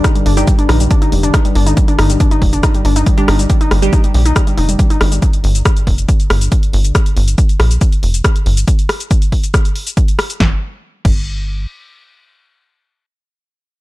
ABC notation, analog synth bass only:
X:1
M:4/4
L:1/8
Q:1/4=139
K:Gm
V:1 name="Analog synth bass" clef=bass
z G,,, z B,,, z F,,, z G,,, | z G,,, z F,,, z G,,, z G,,, | z G,,, z B,,, z F,,, z G,,, | z G,,, z F,,, z G,,, z G,,, |
z G,,, z B,,, z F,,, z G,,, | z8 | G,,, z2 G,,,3 z2 | z8 |]